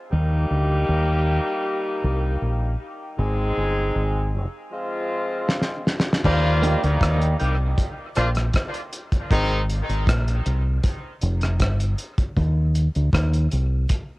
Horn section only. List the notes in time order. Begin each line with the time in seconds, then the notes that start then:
0.11 G3 A#3 D#4 G4
3.17 G#3 C4 D#4 G#4
4.71 F3 G#3 C4 F4
6.24 F3 G3 A#3 F4
6.83 D#3 G3 A#3 D#4
7.38 G3 A#3 D#4 G4
8.16 F3 A#3 D4 F4
9.31 D#3 G#3 C4 D#4